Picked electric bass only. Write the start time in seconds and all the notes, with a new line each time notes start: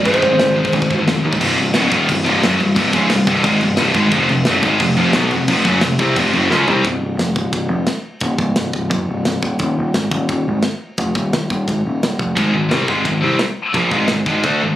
0.05 G#1
0.22 G#1
0.38 G#1
0.74 G#1
0.90 G#1
1.08 F1
1.25 D#2
1.41 C1
1.60 C1
1.76 C#1
1.92 D#1
2.09 C1
2.27 C1
2.44 F#1
2.61 C1
2.77 C1
2.93 C#1
3.10 C1
3.27 C1
3.44 G#1
3.63 C1
3.80 C1
3.94 G#1
4.12 F1
4.30 F1
4.46 F#1
4.63 G#1
4.81 F1
4.98 F1
5.15 B1
5.33 F1
5.48 F1
5.65 F#1
5.83 F1
5.99 C2
6.16 F1
6.34 F#1
6.50 C#2
6.67 C2
6.85 C1
7.01 C1
7.18 F1
7.36 C1
7.52 C1
7.70 F1
8.22 D#1
8.38 C#1
8.56 C1
8.74 C1
8.91 F#1
9.09 C1
9.26 C1
9.43 D#1
9.60 D#1
9.79 D#1
9.94 G#1
10.11 D#1
10.29 D#1
10.48 G#1
10.98 F1
11.15 D#1
11.33 D#1
11.50 D#1
11.68 G#1
11.85 D#1
12.03 D#1
12.19 F1
12.37 G#1
12.54 G#1
12.72 C2
12.88 G#1
13.05 G#1
13.24 C2
13.74 A#1
13.91 G#1
14.11 G#1
14.26 G#1
14.44 D2
14.62 G#1